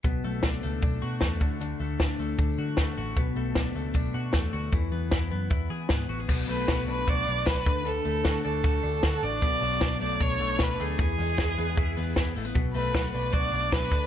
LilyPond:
<<
  \new Staff \with { instrumentName = "Violin" } { \time 4/4 \key b \dorian \tempo 4 = 154 r1 | r1 | r1 | r1 |
r8 b'4 b'8 d''4 b'4 | a'4. a'2 d''8~ | d''4. d''8 cis''4 b'8 gis'8~ | gis'2.~ gis'8 r8 |
r8 b'4 b'8 d''4 b'4 | }
  \new Staff \with { instrumentName = "Clean electric guitar" } { \time 4/4 \key b \dorian b,8 a8 d'8 a8 d'8 fis'8 a8 d8 | d8 a8 d'8 a8 d'8 fis'8 a8 fis'8 | b,8 a8 d'8 a8 d'8 fis'8 a8 fis'8 | e8 b8 e'8 b8 e'8 gis'8 b8 fis'16 gis'16 |
b,8 a8 fis'8 d'8 fis'8 d'8 e'16 fis'16 d8 | d8 a8 fis'8 d'8 fis'8 d'8 fis'8 d'8 | b,8 fis8 d'8 a8 d'8 a8 d'8 a8 | e8 gis8 e'8 b8 e'8 b8 e'8 a16 b16 |
b,8 a8 fis'8 d'8 fis'8 d'8 e'16 fis'16 d8 | }
  \new Staff \with { instrumentName = "Picked electric bass" } { \clef bass \time 4/4 \key b \dorian b,,8 b,,8 b,,8 cis,8 b,,8 b,8 e,8 d,8~ | d,8 d,8 d,8 d,8 d,8 d8 d,8 a,,8 | b,,8 b,,8 b,,8 cis,8 b,,8 b,8 e,8 d,8 | e,8 e,8 e,8 fis,8 e,8 e8 gis,8 a,,8 |
b,,8 b,,8 b,,8 b,,8 b,,8 b,,8 b,,8 d,8~ | d,8 d,8 d,8 d,8 d,8 d,8 d,8 a,,8 | b,,8 b,,8 b,,8 b,,8 b,,8 b,,8 b,,8 d,8 | e,8 e,8 e,8 e,8 e,8 e,8 e,8 a,,8 |
b,,8 b,,8 b,,8 b,,8 b,,8 b,,8 b,,8 d,8 | }
  \new DrumStaff \with { instrumentName = "Drums" } \drummode { \time 4/4 <hh bd>4 <hh bd sn>4 <hh bd>4 <hh bd sn>8 bd8 | hh4 <hh bd sn>4 <hh bd>4 <hh bd sn>4 | <hh bd>4 <hh bd sn>4 <hh bd>4 <hh bd sn>4 | <hh bd>4 <hh bd sn>4 <hh bd>4 <hh bd sn>4 |
<cymc bd>4 <hh bd sn>4 <hh bd>4 <hh bd sn>8 bd8 | hh4 <hh bd sn>4 <hh bd>4 <hh bd sn>4 | <hh bd>8 hho8 <hh bd sn>8 hho8 <hh bd>8 hho8 <hh bd sn>8 hho8 | <hh bd>8 hho8 <hh bd sn>8 hho8 <hh bd>8 hho8 <hh bd sn>8 hho8 |
<hh bd>8 hho8 <hh bd sn>8 hho8 <hh bd>8 hho8 <hh bd sn>8 <hho bd>8 | }
>>